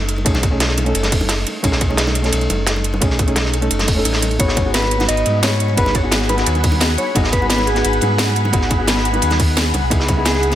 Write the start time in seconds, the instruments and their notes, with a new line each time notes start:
Already playing: sub bass F#1, hollow-body jazz guitar A3 C#4 D#4 A4
0.08 closed hi-hat, ride
0.16 ride, high bongo
0.25 sub bass B1, hollow-body jazz guitar A3 C#4 D#4 G#4, kick, closed hi-hat, ride
0.34 snare, high bongo
0.43 kick, closed hi-hat, ride
0.51 sub bass B1, hollow-body jazz guitar A3 C#4 D#4 G#4
0.60 snare, closed hi-hat, ride, high bongo
0.69 snare
0.78 closed hi-hat, ride, high bongo
0.84 hollow-body jazz guitar A3 C#4 D#4, closed hi-hat
0.88 hollow-body jazz guitar A4
0.95 sub bass F#1, closed hi-hat, ride
1.03 snare, closed hi-hat, high bongo
1.12 kick, closed hi-hat, open hi-hat
1.21 high bongo
1.29 snare, closed hi-hat, ride
1.47 closed hi-hat, ride, high bongo
1.63 sub bass B1, hollow-body jazz guitar A3 C#4 D#4 G#4, kick, closed hi-hat, ride, high bongo
1.72 snare
1.81 kick, closed hi-hat, ride
1.89 hollow-body jazz guitar A3 C#4 D#4 G#4, high bongo
1.97 snare, closed hi-hat, ride
2.07 snare, high bongo
2.15 closed hi-hat, ride
2.22 hollow-body jazz guitar A3 C#4 D#4, snare, closed hi-hat
2.26 hollow-body jazz guitar A4
2.32 sub bass B1, closed hi-hat, ride, high bongo
2.41 closed hi-hat
2.50 sub bass F#1, closed hi-hat, ride, high bongo
2.67 snare, closed hi-hat, ride
2.76 high bongo
2.84 closed hi-hat, ride
2.93 ride, high bongo
3.01 sub bass B1, hollow-body jazz guitar A3 C#4 D#4 G#4, kick, closed hi-hat, ride
3.10 snare
3.19 kick, closed hi-hat, ride, high bongo
3.27 sub bass B1, hollow-body jazz guitar A3 C#4 D#4 G#4, closed hi-hat
3.36 snare, closed hi-hat, ride, high bongo
3.45 snare
3.53 closed hi-hat, ride
3.61 hollow-body jazz guitar A3 C#4 D#4 A4, closed hi-hat, high bongo
3.71 sub bass F#1, closed hi-hat, ride
3.79 snare, closed hi-hat, high bongo
3.87 kick, closed hi-hat, open hi-hat
3.94 hollow-body jazz guitar A3 C#4 D#4
3.99 hollow-body jazz guitar A4
4.05 sub bass A1, closed hi-hat, ride, high bongo
4.13 snare
4.22 closed hi-hat, ride, high bongo
4.31 closed hi-hat
4.39 sub bass G#1, hollow-body jazz guitar B3 D#4 F#4 G#4, ambient pad G#4 F#5 B5, clean electric guitar C#5, kick, closed hi-hat, ride, high bongo
4.48 snare
4.57 kick, closed hi-hat, ride, high bongo
4.64 hollow-body jazz guitar B3 D#4 F#4 G#4
4.74 clean electric guitar B4, snare, closed hi-hat, ride
4.82 snare, high bongo
4.91 closed hi-hat, ride
4.98 hollow-body jazz guitar B3 D#4 F#4, snare, closed hi-hat, high bongo
5.02 hollow-body jazz guitar B4
5.08 sub bass G#1, clean electric guitar D#5, closed hi-hat, ride
5.17 closed hi-hat
5.26 sub bass G#2, closed hi-hat, ride, high bongo
5.43 clean electric guitar C#5, snare, closed hi-hat, ride, high bongo
5.60 closed hi-hat, ride
5.68 ride, high bongo
5.77 sub bass G#1, hollow-body jazz guitar B3 D#4 F#4 G#4, clean electric guitar B4, kick, closed hi-hat, ride
5.86 snare, high bongo
5.95 clean electric guitar C#5, kick, closed hi-hat, ride
6.03 sub bass G#1, hollow-body jazz guitar B3 D#4 F#4 G#4
6.12 snare, closed hi-hat, ride, high bongo
6.21 snare
6.29 clean electric guitar B4, closed hi-hat, ride, high bongo
6.36 hollow-body jazz guitar B3 D#4 F#4, snare, closed hi-hat
6.40 hollow-body jazz guitar B4
6.46 sub bass D#2, clean electric guitar C#5, closed hi-hat, ride
6.55 closed hi-hat, high bongo
6.63 kick, closed hi-hat, open hi-hat
6.72 high bongo
6.80 snare, closed hi-hat, ride
6.97 clean electric guitar C#5, closed hi-hat, ride, high bongo
7.15 sub bass G#1, hollow-body jazz guitar B3 D#4 F#4 G#4, clean electric guitar D#5, kick, closed hi-hat, ride, high bongo
7.24 snare
7.32 clean electric guitar B4, kick, closed hi-hat, ride
7.41 hollow-body jazz guitar B3 D#4 F#4 G#4, high bongo
7.50 clean electric guitar B4, snare, closed hi-hat, ride
7.59 snare, high bongo
7.67 clean electric guitar G#4, closed hi-hat, ride
7.74 hollow-body jazz guitar B3 D#4 F#4, snare, closed hi-hat
7.78 hollow-body jazz guitar B4
7.84 sub bass G#1, closed hi-hat, ride, high bongo
7.93 closed hi-hat
8.01 sub bass G#2, closed hi-hat, ride, high bongo
8.18 snare, closed hi-hat, ride
8.27 high bongo
8.36 closed hi-hat, ride
8.45 ride, high bongo
8.52 sub bass G#1, hollow-body jazz guitar B3 D#4 F#4 G#4, kick, closed hi-hat, ride
8.62 snare
8.70 kick, closed hi-hat, ride, high bongo
8.78 sub bass G#1, hollow-body jazz guitar B3 D#4 F#4 G#4
8.87 snare, closed hi-hat, ride, high bongo
8.97 snare
9.05 closed hi-hat, ride
9.12 hollow-body jazz guitar B3 D#4 F#4, closed hi-hat, high bongo
9.16 hollow-body jazz guitar B4
9.22 sub bass D#2, closed hi-hat, ride
9.31 snare, closed hi-hat, high bongo
9.40 kick, closed hi-hat, open hi-hat
9.57 snare, closed hi-hat, ride, high bongo
9.73 sub bass C#2, ambient pad B4 D#6, closed hi-hat, ride, high bongo
9.83 sub bass B1
9.90 sub bass C#2, hollow-body jazz guitar B3 D#4 E4 G#4, kick, closed hi-hat, ride, high bongo
10.00 snare
10.08 kick, closed hi-hat, ride, high bongo
10.16 hollow-body jazz guitar B3 D#4 E4 G#4
10.25 clean electric guitar G#4, snare, closed hi-hat, ride
10.35 snare, high bongo
10.43 closed hi-hat, ride
10.50 hollow-body jazz guitar B3 D#4, snare, closed hi-hat